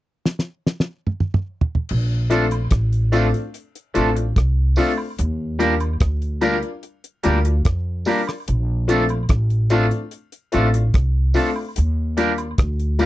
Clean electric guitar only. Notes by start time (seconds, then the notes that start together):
2.30 A3 D4 F4 A4
3.12 A3 D4 F4 A4
3.94 A3 D4 F4 A4
4.15 muted clean electric guitar stroke
4.77 A3 D4 F4 A4
5.59 A#3 D4 G4 A#4
6.41 A#3 D4 G4 A#4
7.24 A#3 D4 G4 A#4
7.45 muted clean electric guitar stroke
8.07 A#3 D4 G4 A#4
8.89 A3 D4 F4 A4
9.71 A3 D4 F4 A4
10.53 A3 D4 F4 A4
10.74 muted clean electric guitar stroke
11.35 A3 D4 F4 A4
12.17 A#3 D4 G4 A#4
13.00 A#3 D4 G4 A#4